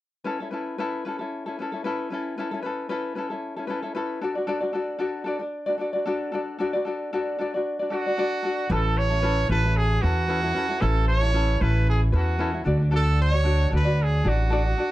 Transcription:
0.24 ukulele C#4 E4 A4 B4
0.40 ukulele C#4 E4 A4
0.51 ukulele C#4 E4 A4 B4
0.78 ukulele C#4 E4 A4 B4
1.05 ukulele C#4 E4 A4 B4
1.19 ukulele C#4 E4 A4
1.46 ukulele C#4 E4 A4
1.59 ukulele C#4 E4 A4 B4
1.72 ukulele C#4 E4 A4
1.84 ukulele C#4 E4 A4 B4
2.10 ukulele C#4 E4 A4 B4
2.38 ukulele C#4 E4 A4 B4
2.51 ukulele C#4 E4 A4
2.62 ukulele C#4 E4 A4 B4
2.89 ukulele C#4 E4 A4 B4
3.15 ukulele C#4 E4 A4 B4
3.30 ukulele C#4 E4 A4
3.56 ukulele C#4 E4 A4
3.67 ukulele C#4 E4 A4 B4
3.82 ukulele C#4 E4 A4
3.95 ukulele C#4 E4 A4 B4
4.21 ukulele D4 F#4 A4 D5
4.35 ukulele D4 F#4 D5
4.47 ukulele D4 F#4 A4 D5
4.61 ukulele D4 F#4 D5
4.73 ukulele D4 F#4 A4 D5
4.99 ukulele D4 F#4 A4 D5
5.24 ukulele D4 F#4 A4 D5
5.39 ukulele D4 D5
5.66 ukulele D4 F#4 D5
5.78 ukulele D4 F#4 A4 D5
5.93 ukulele D4 F#4 D5
6.06 ukulele D4 F#4 A4 D5
6.32 ukulele D4 F#4 A4 D5
6.59 ukulele D4 F#4 A4 D5
6.73 ukulele D4 F#4 D5
6.85 ukulele D4 F#4 A4 D5
7.13 ukulele D4 F#4 A4 D5
7.38 ukulele D4 F#4 A4 D5
7.54 ukulele D4 F#4 D5
7.79 ukulele D4 F#4 D5
7.90 ukulele D4 F#4 A4 D5, trumpet F#4
8.06 ukulele D4 F#4 D5
8.17 ukulele D4 F#4 A4 D5
8.43 ukulele D4 F#4 A4 D5
8.70 upright bass A1, ukulele C#4 E4 A4 B4, trumpet A4
8.97 trumpet C#5
9.10 ukulele C#4 E4 A4
9.22 ukulele C#4 E4 A4 B4
9.49 upright bass A1, ukulele C#4 E4 A4 B4, trumpet B4
9.64 ukulele C#4 E4 A4
9.77 trumpet G#4
10.01 upright bass E2, ukulele C#4 E4 A4 B4, trumpet F#4
10.28 ukulele C#4 E4 A4 B4
10.43 ukulele C#4 E4 A4
10.54 ukulele C#4 E4 A4 B4
10.68 ukulele C#4 E4 A4
10.80 upright bass A1, ukulele C#4 E4 A4 B4, trumpet A4
11.08 trumpet C#5
11.21 ukulele C#4 E4 A4
11.33 ukulele C#4 E4 A4 B4
11.60 upright bass A1, ukulele C#4 E4 A4 B4, trumpet B4
11.89 trumpet G#4
12.12 upright bass E2, ukulele C#4 E4 A4 B4, trumpet F#4
12.38 ukulele C#4 E4 A4 B4
12.52 ukulele C#4 E4 A4
12.64 upright bass D2, ukulele D4 F#4 A4 D5
12.79 ukulele D4 D5
12.91 ukulele D4 F#4 A4 D5
12.96 trumpet A4
13.22 trumpet C#5
13.31 ukulele D4 F#4 D5
13.44 ukulele D4 F#4 A4 D5
13.71 upright bass D2, ukulele D4 F#4 A4 D5
13.75 trumpet B4
13.85 ukulele D4 F#4 D5
14.03 trumpet G#4
14.23 upright bass A1, ukulele D4 F#4 A4 D5
14.28 trumpet F#4
14.50 ukulele D4 F#4 A4 D5
14.65 ukulele D4 D5
14.77 ukulele D4 F#4 A4 D5

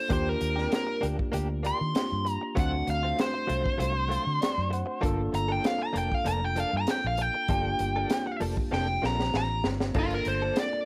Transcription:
Already playing: tine electric piano A4, lead electric guitar C5
0.09 fingered electric bass D#2, tine electric piano A#3 D4 F4 G4, clean electric guitar A#3 D4 G4, lead electric guitar C5, kick, closed hi-hat
0.29 lead electric guitar A#4
0.40 fingered electric bass D#2, muted clean electric guitar stroke, closed hi-hat
0.56 clean electric guitar D4 G4, snare
0.71 muted clean electric guitar stroke, snare, closed hi-hat
0.75 lead electric guitar A#4
0.87 muted clean electric guitar stroke
1.01 fingered electric bass D2, clean electric guitar A#3 D4 G4, closed hi-hat
1.18 muted clean electric guitar stroke, kick
1.32 fingered electric bass D2, clean electric guitar A#3 D4 G4, closed hi-hat
1.49 muted clean electric guitar stroke
1.63 clean electric guitar A#3 D4 G4, lead electric guitar C6, closed hi-hat
1.79 fingered electric bass D#3, muted clean electric guitar stroke
1.94 tine electric piano A#3 D4 F4 G4, snare, closed hi-hat
2.12 fingered electric bass G2
2.25 muted clean electric guitar stroke, closed hi-hat
2.31 lead electric guitar A#5
2.41 muted clean electric guitar stroke
2.55 fingered electric bass D2, clean electric guitar F#3 A3 C4 F4, tine electric piano A3 C4 D4 F#4, kick, closed hi-hat
2.59 lead electric guitar F#5
2.87 fingered electric bass D2, lead electric guitar F5, muted clean electric guitar stroke, closed hi-hat
3.03 clean electric guitar A3 C4 F4
3.18 lead electric guitar C5, muted clean electric guitar stroke, snare, closed hi-hat
3.34 muted clean electric guitar stroke
3.47 fingered electric bass C2, clean electric guitar F#3 A3 C4 F4, closed hi-hat
3.64 muted clean electric guitar stroke, kick
3.78 fingered electric bass C2, clean electric guitar F#3 A3 C4 F4, closed hi-hat
3.94 muted clean electric guitar stroke
4.08 clean electric guitar F#3 A3 C4 F4, closed hi-hat
4.25 fingered electric bass D3, muted clean electric guitar stroke
4.41 tine electric piano D5, snare, closed hi-hat
4.58 fingered electric bass F#2
4.70 tine electric piano F#5, muted clean electric guitar stroke, closed hi-hat
4.86 muted clean electric guitar stroke
5.01 fingered electric bass G1, clean electric guitar F3 A#3 D4 A4, tine electric piano A#3 D4 F4, kick, closed hi-hat
5.06 tine electric piano A4
5.32 fingered electric bass G1, lead electric guitar A#5, muted clean electric guitar stroke, closed hi-hat
5.48 clean electric guitar A#3 D4 A4, lead electric guitar G5
5.63 lead electric guitar F5, muted clean electric guitar stroke, snare, closed hi-hat
5.79 muted clean electric guitar stroke
5.83 lead electric guitar A#5
5.93 fingered electric bass F1, clean electric guitar F3 A#3 D4 A4, closed hi-hat
5.98 lead electric guitar G5
6.10 muted clean electric guitar stroke, kick
6.14 lead electric guitar F5
6.25 fingered electric bass F1, clean electric guitar F3 A#3 D4 A4, lead electric guitar A#5, closed hi-hat
6.41 muted clean electric guitar stroke
6.45 lead electric guitar G5
6.56 clean electric guitar F3 A#3 D4 A4, closed hi-hat
6.60 lead electric guitar F5
6.72 fingered electric bass G2, muted clean electric guitar stroke
6.77 lead electric guitar A#5
6.87 lead electric guitar G5, snare, closed hi-hat
7.04 fingered electric bass A#1, lead electric guitar F5
7.17 muted clean electric guitar stroke, closed hi-hat
7.21 lead electric guitar G5
7.34 muted clean electric guitar stroke
7.48 fingered electric bass G1, clean electric guitar F3 A#3 D4 A4, tine electric piano A#3 D4 F4 G4, kick, closed hi-hat
7.79 fingered electric bass G1, muted clean electric guitar stroke, closed hi-hat
7.96 clean electric guitar A#3 D4 A4
8.10 muted clean electric guitar stroke, snare, closed hi-hat
8.26 muted clean electric guitar stroke
8.40 fingered electric bass F1, clean electric guitar F3 A#3 D4 A4, open hi-hat
8.57 muted clean electric guitar stroke, kick
8.71 fingered electric bass F1, clean electric guitar F3 A#3 D4 A4, lead electric guitar G5, snare
8.88 muted clean electric guitar stroke
9.02 fingered electric bass A#1, clean electric guitar F3 A#3 D4 A4, snare
9.06 lead electric guitar A#5
9.19 muted clean electric guitar stroke, snare
9.34 fingered electric bass A1, lead electric guitar A#5, snare
9.64 fingered electric bass G1, muted clean electric guitar stroke, snare
9.80 muted clean electric guitar stroke, snare
9.94 fingered electric bass G1, clean electric guitar F3 A#3 D4 A4, tine electric piano A#3 D4 F4 A4, kick, crash
9.99 lead electric guitar F4
10.11 lead electric guitar A#4, closed hi-hat
10.25 fingered electric bass G1, lead electric guitar C5, muted clean electric guitar stroke, closed hi-hat
10.42 clean electric guitar A#3 D4 A4
10.56 lead electric guitar D5, muted clean electric guitar stroke, snare, closed hi-hat
10.73 muted clean electric guitar stroke

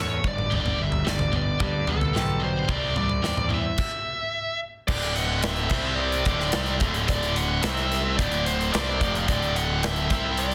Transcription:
Already playing: picked electric bass E2, clean electric guitar A3 C#4 A4
0.01 lead electric guitar C#5
0.23 picked electric bass G1, clean electric guitar G2, kick
0.28 lead electric guitar D5
0.38 mid tom
0.50 picked electric bass G1, distorted electric guitar G2 D3 G3, clean electric guitar G2, floor tom
0.55 lead electric guitar D5
0.66 floor tom
0.79 picked electric bass G1, distorted electric guitar G2 D3, lead electric guitar E5
0.92 floor tom
1.05 picked electric bass G1, distorted electric guitar G2 D3, clean electric guitar G3, snare
1.09 lead electric guitar D5
1.19 floor tom, mid tom
1.32 distorted electric guitar G2 D3, clean electric guitar B3, floor tom
1.36 lead electric guitar D5
1.59 distorted electric guitar G2 D3, picked electric bass G2, clean electric guitar G3, kick, floor tom
1.64 lead electric guitar D5
1.87 picked electric bass C2, distorted electric guitar G2 D3, clean electric guitar B3, lead electric guitar A4, floor tom
2.01 floor tom
2.13 picked electric bass B1, distorted electric guitar G2 D3, clean electric guitar G4, snare, mid tom
2.40 distorted electric guitar G2 D3, clean electric guitar D4, lead electric guitar C5
2.67 picked electric bass C2, distorted electric guitar C3 G3 C4, clean electric guitar C3, lead electric guitar D5, kick, floor tom
2.95 picked electric bass C2, distorted electric guitar C3 G3, lead electric guitar D5, floor tom, mid tom
3.09 floor tom
3.22 picked electric bass E2, distorted electric guitar C3 G3, clean electric guitar C4, snare
3.37 floor tom, mid tom
3.49 distorted electric guitar C3 G3, clean electric guitar E4, floor tom
3.54 lead electric guitar E5
3.78 kick, crash
4.88 picked electric bass D1, distorted electric guitar D2 A2 D3, lead electric guitar D5, kick, crash
5.02 closed hi-hat
5.15 lead electric guitar F#5, closed hi-hat
5.43 lead electric guitar E5, snare, closed hi-hat
5.56 closed hi-hat
5.69 picked electric bass C2, distorted electric guitar C3 G3 C4, lead electric guitar E5, kick, crash
5.95 lead electric guitar D5
6.12 closed hi-hat
6.25 picked electric bass D1, distorted electric guitar D2 A2 D3, kick, closed hi-hat
6.40 snare
6.52 picked electric bass C2, distorted electric guitar C3 G3 C4, snare, closed hi-hat
6.66 closed hi-hat
6.80 picked electric bass D1, distorted electric guitar D2 A2 D3, kick, closed hi-hat
6.94 closed hi-hat
7.08 lead electric guitar D5, kick, closed hi-hat
7.23 closed hi-hat
7.36 lead electric guitar F#5, closed hi-hat
7.63 picked electric bass C2, distorted electric guitar C3 G3 C4, lead electric guitar E5, snare, closed hi-hat
7.77 closed hi-hat
7.92 snare, closed hi-hat
8.17 picked electric bass D1, distorted electric guitar D2 A2 D3, lead electric guitar D5, kick, closed hi-hat
8.32 closed hi-hat
8.46 lead electric guitar C5, closed hi-hat
8.61 closed hi-hat
8.72 picked electric bass C2, distorted electric guitar C3 G3 C4, lead electric guitar D5, snare, closed hi-hat
9.01 picked electric bass F1, distorted electric guitar F2 C3 F3, kick, closed hi-hat
9.15 closed hi-hat
9.27 picked electric bass D1, distorted electric guitar D2 A2 D3, lead electric guitar D5, kick, closed hi-hat
9.42 closed hi-hat
9.56 lead electric guitar F#5, closed hi-hat
9.83 lead electric guitar E5, snare, closed hi-hat
9.96 closed hi-hat
10.10 picked electric bass C2, distorted electric guitar C3 G3 C4, lead electric guitar E5, kick, snare, closed hi-hat
10.37 lead electric guitar D5, closed hi-hat
10.51 closed hi-hat

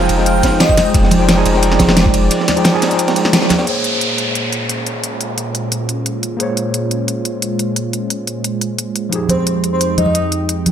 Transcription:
Already playing: analog synth pad G#3 D#4 G5
0.00 tine electric piano F3 D#4 G#4 G#5, snare
0.09 sub bass F1, closed hi-hat, ride, ride bell
0.15 tine electric piano F3 D#4, snare
0.19 tine electric piano G#4 G5
0.26 digital synth lead F5, closed hi-hat, ride
0.43 kick, snare, closed hi-hat, ride, ride bell
0.53 snare
0.60 digital synth lead D#5, snare, closed hi-hat, ride
0.69 kick, ride
0.77 snare, closed hi-hat, ride, ride bell, high conga
0.94 sub bass F1, analog synth pad D5, kick, closed hi-hat, ride
1.03 snare
1.11 closed hi-hat, ride, ride bell, high conga
1.19 tine electric piano F3 D#4 G#4 G5
1.29 snare, closed hi-hat, ride
1.36 tine electric piano F3 D#4 G#4 G#5, snare
1.46 sub bass F1, closed hi-hat, ride, ride bell
1.51 tine electric piano F3 D#4, snare
1.55 tine electric piano G#4 G5
1.63 closed hi-hat, ride
1.72 snare
1.79 sub bass F1, kick, snare, closed hi-hat, ride, ride bell, high conga
1.88 snare, high conga
1.97 snare, closed hi-hat, ride
2.06 kick
2.14 closed hi-hat, ride, ride bell
2.31 closed hi-hat, ride
2.40 snare
2.48 snare, closed hi-hat, ride, ride bell, high conga
2.56 tine electric piano F3 D#4 G#4 G5, closed hi-hat
2.64 snare, closed hi-hat, ride
2.72 tine electric piano F3 D#4 G#4 G#5, snare
2.82 snare, closed hi-hat, ride, ride bell
2.88 tine electric piano F3 D#4, snare, closed hi-hat
2.92 tine electric piano G#4 G5
2.99 closed hi-hat, ride
3.08 snare, closed hi-hat, ride
3.16 snare, closed hi-hat, ride bell
3.25 snare, ride
3.33 snare, closed hi-hat, ride
3.42 snare, ride
3.49 snare, closed hi-hat, ride, ride bell, high conga
3.59 snare, ride
3.64 analog synth pad A#2 G#3 C#4 F4, tine electric piano A#3 G#4, closed hi-hat, downlifter
3.68 tine electric piano C5 C#5
3.84 closed hi-hat
4.01 closed hi-hat
4.18 closed hi-hat
4.35 closed hi-hat
4.53 closed hi-hat
4.69 closed hi-hat
4.87 closed hi-hat
5.04 closed hi-hat
5.21 closed hi-hat
5.38 closed hi-hat
5.55 closed hi-hat
5.72 closed hi-hat
5.89 closed hi-hat
6.06 closed hi-hat
6.23 closed hi-hat
6.37 tine electric piano A#3 G#4, closed hi-hat
6.41 tine electric piano C5 C#5
6.57 closed hi-hat
6.74 closed hi-hat
6.91 closed hi-hat
7.08 closed hi-hat
7.25 closed hi-hat
7.42 closed hi-hat
7.59 closed hi-hat
7.76 closed hi-hat
7.93 closed hi-hat
8.10 closed hi-hat
8.27 closed hi-hat
8.44 closed hi-hat
8.61 closed hi-hat
8.79 closed hi-hat
8.96 closed hi-hat
9.09 analog synth pad F2 D#4 G5, tine electric piano F3 D#4, closed hi-hat
9.13 tine electric piano G4 G#4
9.29 digital synth lead C5, closed hi-hat, high conga
9.39 digital synth lead C5
9.47 closed hi-hat
9.64 closed hi-hat
9.73 digital synth lead C5
9.81 closed hi-hat
9.98 digital synth lead D#5, closed hi-hat, high conga
10.06 high conga
10.15 closed hi-hat
10.32 closed hi-hat
10.49 closed hi-hat
10.66 closed hi-hat, high conga

